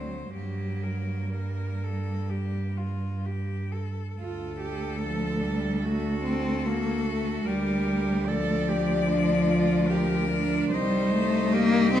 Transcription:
Already playing: D2 F#3 C4 C5
0.34 G2 F#3 A#3 G4
0.84 A#4
1.32 G3 A#4
1.84 A4
2.30 G4
2.77 F4
3.26 G4
3.72 A4
4.16 D2 F4 A4
4.60 G4
5.00 F3 A4
5.41 G3
5.83 A3 F#4 A4
6.23 C4
6.66 A#3 F#4
7.07 A3
7.45 D2 G3 G4 A#4
8.26 F3 A4 D5
8.69 G4
9.09 D4
9.50 F4
9.88 G4 A#4
10.31 D4
10.71 C2 G3 D#4 C5
11.12 A3
11.54 A#3 G4
11.94 C4

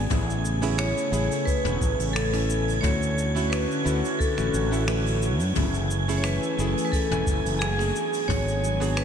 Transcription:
Already playing: G#5 G#6, downlifter
0.09 A1 C#3 A3 B3 C#4 E4 G#4, kick, mid tom, open hi-hat, cabasa
0.30 cabasa
0.45 cabasa
0.62 B3 C#4 E4 G#4, open hi-hat, cabasa
0.78 C#5, finger snap, open hi-hat, cabasa
0.98 cabasa
1.11 A1 B3 C#4 E4 G#4, open hi-hat, cabasa
1.31 open hi-hat, cabasa
1.45 B4, kick, open hi-hat, cabasa
1.64 E1 B3 C#4 E4 G#4, mid tom, cabasa
1.81 A1, kick, open hi-hat, cabasa
1.99 A1, open hi-hat, cabasa
2.13 A4, finger snap, open hi-hat, cabasa
2.33 B3 C#4 E4 G#5, finger snap, open hi-hat, cabasa
2.50 cabasa
2.68 open hi-hat, cabasa
2.81 D2 D3 A3 C#4 E4 F#4 C#5, kick, mid tom, open hi-hat, cabasa
3.03 cabasa
3.18 cabasa
3.35 A3 C#4 E4 F#4, open hi-hat, cabasa
3.50 B4, finger snap, open hi-hat, cabasa
3.71 cabasa
3.84 D2 A3 C#4 E4 F#4, open hi-hat, cabasa
4.05 open hi-hat, cabasa
4.19 A4, kick, open hi-hat, cabasa
4.37 A1 A3 C#4 E4 F#4, finger snap, cabasa
4.54 A1, open hi-hat, cabasa
4.71 A3 C#4 E4 A4, open hi-hat, cabasa
4.87 A3 C#4 E4 B4, finger snap, open hi-hat, cabasa
5.06 open hi-hat, cabasa
5.22 cabasa
5.39 F#2, open hi-hat, cabasa
5.55 F#1 E3 A3 C#4 E4 G#4 G#5, kick, mid tom, open hi-hat, cabasa
5.74 cabasa
5.91 cabasa
6.08 A3 C#4 E4 G#4, open hi-hat, cabasa
6.17 C#5
6.24 B4, finger snap, open hi-hat, cabasa
6.43 cabasa
6.58 F#1 A3 C#4 E4 G#4, open hi-hat, cabasa
6.77 open hi-hat, cabasa
6.85 B4
6.92 A4, kick, open hi-hat, cabasa
7.10 E1 A3 C#4 E4 G#5, mid tom, cabasa
7.26 F#1, kick, open hi-hat, cabasa
7.45 F#1, open hi-hat, cabasa
7.59 G#4, finger snap, open hi-hat, cabasa
7.77 B3 D4 F#4 G#4, finger snap, open hi-hat, cabasa
7.94 F#3 B3, cabasa
8.14 open hi-hat, cabasa
8.28 G#1 B3 D4 F#4 G#4 C#5, kick, mid tom, open hi-hat, cabasa
8.48 cabasa
8.64 cabasa
8.80 B3 D4 F#4 G#4, open hi-hat, cabasa
8.97 B4, finger snap, open hi-hat, cabasa

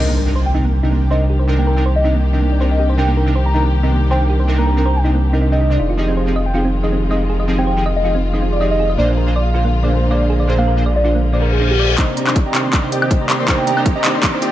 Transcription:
Already playing: C3 C4
0.00 C2 D#3 A#3 C4 D4 D#4 G4 A#4 D#5, impact
0.08 A#3
0.17 A#4
0.26 C3 C4 D4 D#4 A#4
0.36 C5
0.46 G5
0.54 C3 C4 D4 D#4 A#4
0.65 A#3
0.83 C3 C4 D4 D#4 A#4
0.92 A#3
1.10 C3 C4 D4 D#4 A#4 C5 D#5
1.30 G4
1.39 C5
1.47 C3 C4 D4 D#4 A#4
1.58 A#3 G5
1.67 A#4
1.76 C3 C4 D4 D#4 A#4
1.86 C5
1.96 D#5
2.03 C3 C4 D4 D#4 A#4
2.15 A#3
2.32 C3 C4 D4 D#4 A#4
2.42 A#3
2.52 D5
2.60 C3 C4 D4 D#4 A#4 C5
2.71 D#5
2.79 G4
2.89 C5
2.97 C3 C4 D4 D#4 A#4 G5
3.08 A#3
3.17 A#4
3.26 C3 C4 D4 D#4 A#4
3.36 C5
3.46 A#5
3.54 C3 C4 D4 D#4 A#4
3.64 A#3
3.82 C3 C4 D4 D#4 A#4
3.92 A#3
4.10 C3 C4 D4 D#4 A#4 C5 G5
4.30 G4
4.40 C5
4.47 C3 C4 D4 D#4 A#4
4.58 A#3 A#5
4.67 A#4
4.76 C3 C4 D4 D#4 A#4
4.86 C5
4.96 G5
5.04 C3 C4 D4 D#4 A#4
5.15 A#3
5.33 C3 C4 D4 D#4 A#4
5.42 D#4
5.51 C3 C4 D4 D#4 A#4 D#5
5.61 D#4
5.70 C3 C4 D4 D#4 A#4 D5
5.79 F1 D#3 G#3 D#4 F4
5.90 F4
5.97 F3 C4 D#4 G4 G#4 D#5
6.08 C4
6.17 C5
6.26 F3 C4 D#4 G4 G#4
6.36 D#5
6.46 G5
6.54 F3 C4 D#4 F4 G4 G#4
6.65 C4
6.82 F3 C4 D#4 G4 G#4 D#5
6.92 C4
7.10 F3 C4 D#4 G4 G#4 D#5
7.30 G#4
7.40 D#5
7.48 F3 C4 D#4 G4 G#4
7.58 C4 G5
7.67 C5
7.76 F3 C4 D#4 G4 G#4
7.86 D#5
7.96 D#5
8.04 F3 C4 D#4 F4 G4 G#4
8.15 C4
8.33 F3 C4 D#4 G4 G#4 D#5
8.42 C4
8.52 D5
8.60 F3 C4 D#4 G4 G#4 D#5
8.71 D#5
8.80 G#4
8.90 D#5
8.97 A#1 A#2 D3 G#3 A#3 D4 G#4 C5 D5
9.09 A#3
9.17 A#4
9.26 A#2 A#3 D4 G#4 C5
9.36 D5
9.46 F5
9.54 A#2 A#3 D4 F4 G#4 C5
9.65 A#3
9.82 A#2 A#3 D4 G#4 C5 D5
9.92 A#3
10.10 A#2 A#3 D4 G#4 C5 D5
10.30 G#4
10.40 D5
10.47 A#2 A#3 D4 G#4 C5
10.58 A#3 F5
10.67 A#4
10.76 A#2 A#3 D4 G#4 C5
10.86 D5
10.96 D5
11.03 A#2 A#3 D4 F4 G#4 C5
11.15 A#3
11.23 reverse cymbal
11.32 A#2 A#3 D4 G#4 C5 D5
11.42 A#4
11.52 G#4
11.60 A#2 A#3 D4 G#4 C5
11.71 G4
11.79 D5
11.89 D5
11.97 C3 D#3 A#3 C4 D4 D#4 G4 C5 D5 D#5 A#5, kick, clap, closed hi-hat, riser
12.17 C4 G4 D5 D#5 A#5, closed hi-hat
12.26 C3 A#3 C4 D4 D#4 G4 C5 D5 D#5 A#5, clap, high woodblock
12.36 kick, closed hi-hat
12.46 C4 G4 D5 D#5 G5 A#5
12.53 C3 A#3 D4 D#4 C5, clap, closed hi-hat
12.65 C4 G4 D5 D#5 C6
12.73 C4 G4 D5 D#5 A#5, kick, clap, closed hi-hat
12.82 C3 A#3 D4 D#4 C5
12.92 C4 G4 D5 D#5 G5, closed hi-hat
13.02 C4 G4 D5 D#5 G5, high woodblock
13.10 C3 A#3 D4 D#4 C5 D#5, kick, closed hi-hat
13.21 C4 G4 D5 D#5 A#5
13.30 clap, closed hi-hat
13.40 C4 G4 D5 D#5 C6
13.47 C3 A#3 C4 D4 D#4 G4 C5 D5 D#5 A#5, kick, clap, closed hi-hat
13.58 G5
13.67 C4 G4 D5 D#5 A#5, closed hi-hat
13.76 C3 A#3 C4 D4 D#4 G4 C5 D5 D#5 A#5, high woodblock
13.86 kick, closed hi-hat
13.95 C4 G4 D5 D#5 A#5
14.03 C3 A#3 D4 D#4 C5, clap, closed hi-hat
14.14 C4 G4 D5 D#5 C6
14.23 C4 G4 D5 D#5 A#5, kick, clap, closed hi-hat
14.32 C3 A#3 D4 D#4 C5
14.42 C4 G4 D5 D#5 G5, closed hi-hat

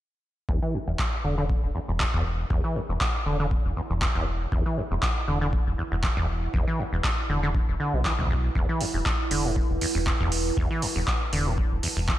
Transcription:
0.49 E1 E2 E4, kick
0.57 B4
0.62 E3
0.74 E2
0.87 E1 E2 F#5
0.95 E6
0.99 kick, clap
1.24 E1 D3
1.38 D3
1.50 kick
1.63 E1
1.75 E2
1.88 E1 E2
2.00 E2, kick, clap
2.14 E1 E2
2.50 E1 E2, kick
2.64 E3
2.76 E2
2.89 E1 E2
3.01 kick, clap
3.26 E1 D3
3.40 D3
3.51 kick
3.65 E1
3.76 E2
3.90 E1 E2
4.02 E2, kick, clap
4.15 E1 E2
4.52 E1 E2, kick
4.66 E3
4.77 E2
4.91 E1 E2
5.03 kick, clap
5.28 E1 D3
5.41 D3
5.53 kick
5.67 E1
5.78 E2
5.92 E1 E2
6.03 E2, kick, clap
6.17 E1 E2
6.54 E1 E2, kick
6.67 E3
6.79 E2
6.93 E1 E2
7.04 kick, clap
7.29 E1 D3
7.43 D3
7.55 kick
7.68 E1
7.80 D3
7.93 B1 B2
8.05 E3, kick, clap
8.19 B1 D2, kick
8.30 E2
8.55 E1 E2, kick
8.69 E3
8.81 E2, open hi-hat
8.94 E1 E2
9.02 A5
9.06 kick, clap
9.31 E1 D3, open hi-hat
9.45 A2
9.56 kick
9.70 E1
9.81 E2, open hi-hat
9.95 E1 E2
10.07 E2, kick, clap
10.20 E1 E2
10.32 open hi-hat
10.57 E1 E2, kick
10.71 E3
10.82 E2, open hi-hat
10.96 E1 E2
11.08 kick, clap
11.33 E1 D3, open hi-hat
11.46 A2
11.58 kick
11.72 E1
11.83 E2, open hi-hat
11.97 E1 E2
12.08 E2, kick, clap

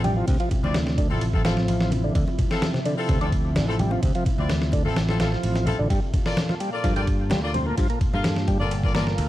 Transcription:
Already playing: A1 C3 F3 E4
0.04 G3, ride, high conga, low conga
0.17 F3
0.27 D2 C3, kick, ride, muted conga
0.40 F3, ride
0.51 kick, ride, low conga
0.63 D2 C4 E4 F4 D5, muted conga
0.74 snare, ride, high conga
0.87 snare
0.98 D3, kick, ride
1.10 A1 C4 E4 F4 A4, muted conga
1.21 ride
1.33 C4 E4 F4 A4, kick, high conga
1.45 F3 C4 E4 F4 A4, snare, ride, muted conga
1.57 snare
1.68 A1, ride
1.80 snare
1.91 ride, muted conga, high conga, low conga
2.04 D3
2.15 D2 D3, kick, ride
2.28 muted conga
2.39 kick, ride, low conga
2.51 C4 E4 F4 A4, snare
2.62 snare, ride, high conga
2.74 C3, snare, muted conga
2.85 D3, ride
2.98 C4 E4 F4 A4
3.09 D2 C3, kick, ride, muted conga
3.21 C4 D4 E4 F4 A4, ride, high conga
3.32 kick, ride
3.55 A1 D3, snare, ride, muted conga
3.68 C4 E4 F4 A4
3.79 G3, ride, high conga, low conga
3.91 F3, muted conga
4.03 D2 C3, kick, ride
4.15 F3, ride
4.25 kick, ride, low conga
4.38 D2 C4 E4 F4 D5, muted conga
4.49 snare, ride, high conga
4.62 snare
4.72 D3, kick, ride, muted conga
4.85 A1 C4 E4 F4 A4
4.96 snare, ride
5.08 C4 E4 F4 A4, snare, high conga
5.20 A1 F3 C4 E4 F4 A4, snare, ride, muted conga
5.32 snare
5.43 A1, ride
5.55 snare, muted conga
5.66 C4 E4 F4 A4, ride, high conga, low conga
5.79 A1 D3
5.90 G2 A#2 G3 F4 A4, kick, ride
6.13 kick, ride, muted conga, low conga
6.26 F4 A4 A#4 D5, snare
6.37 snare, ride, high conga
6.49 F3, snare, muted conga
6.60 G3, ride
6.73 F4 A4 A#4 D5
6.84 G2 F3, kick, ride
6.96 F4 G4 A4 A#4 D5, ride, muted conga, high conga
7.07 kick, ride
7.30 D2 G3, snare, ride, muted conga
7.43 F4 A4 A#4 D5
7.54 C4, ride, high conga, low conga
7.67 A#3
7.77 G2 F3, kick, ride, muted conga
7.90 A#3, ride
8.01 kick, ride, low conga
8.13 G2 F4 A4 A#4 F5, muted conga
8.24 snare, ride, high conga
8.36 snare
8.48 G3, kick, ride
8.60 G1 F4 A4 A#4 D5, muted conga
8.71 ride
8.84 F4 A4 A#4 D5, kick, high conga
8.95 A#3 F4 A4 A#4 D5, snare, ride, muted conga
9.07 snare
9.18 D2, ride

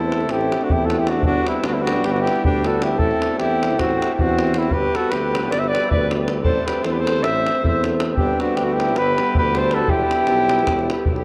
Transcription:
Already playing: E2 A3 C4 E4 A4
0.12 davul high
0.20 davul high
0.29 A1 E4 G4, davul high
0.41 davul high
0.52 davul high
0.61 D4 F#4, davul high
0.70 E2 E4 G4, davul low
0.85 F#4 A4
0.90 davul high
0.98 E4 G4
1.07 D4 F#4, davul high
1.23 G1 G3 B3 D4 F#4, davul low
1.47 C4 E4, davul high
1.64 D2 D4 F#4, davul high
1.73 C4 E4
1.82 D4 F#4
1.87 davul high
1.96 davul high
2.04 G1 D4 G4, davul high
2.11 D4 F#4
2.16 davul high
2.20 E4 G4
2.27 davul high
2.36 davul high
2.45 D2 D4 G4, davul low
2.64 F#4 A4, davul high
2.82 E4 G4, davul high
2.98 A1 A3 C4 E4 A4, davul low
3.11 davul high
3.22 davul high
3.38 E2 E4 G4, davul high
3.51 davul high
3.63 davul high
3.71 davul high
3.79 A1 C4 F#4, davul high, davul low
3.91 davul high
4.02 davul high
4.14 E4 G4
4.19 E2 C4 F#4, davul low
4.29 davul high
4.39 davul high
4.47 davul high
4.54 C4 E4, davul high
4.63 davul high
4.71 G1 G3 B3 G4 B4, davul low
4.95 F#4 A4, davul high
5.11 D2 G4 B4, davul high
5.35 davul high
5.43 davul high
5.51 G1 B4 D5, davul high
5.59 C5 E5
5.64 B4 D5, davul high
5.75 davul high
5.84 C5 E5, davul high
5.89 D2 B4 D5, davul low
6.11 davul high
6.28 davul high
6.43 A1 A3 C4 A4 C5, davul low
6.66 G4 B4, davul high
6.83 E2 A4 C5, davul high
6.92 G4 B4
6.98 A4 C5
7.07 davul high
7.16 davul high
7.23 A1 C5 E5, davul high
7.36 davul high
7.47 davul high
7.55 davul high
7.63 E2 E5, davul low
7.68 C5
7.84 davul high
8.00 davul high
8.15 G1 G3 B3 G4, davul low
8.19 D4
8.40 D4 F#4, davul high
8.56 D2 D4 G4, davul high
8.64 D4 F#4
8.73 E4 G4
8.80 davul high
8.89 davul high
8.96 G1 G4 B4, davul high
9.07 davul high
9.18 davul high
9.27 davul high
9.35 D2 G4 B4, davul low
9.55 A4 C5, davul high
9.71 F#4 A4, davul high
9.88 E1 G3 B3 E4 G4, davul low
10.11 davul high
10.19 davul high
10.27 B1, davul high
10.49 davul high
10.59 davul high
10.67 E1, davul high, davul low
10.79 davul high
10.90 davul high
10.98 davul high
11.06 B1, davul low
11.16 davul high

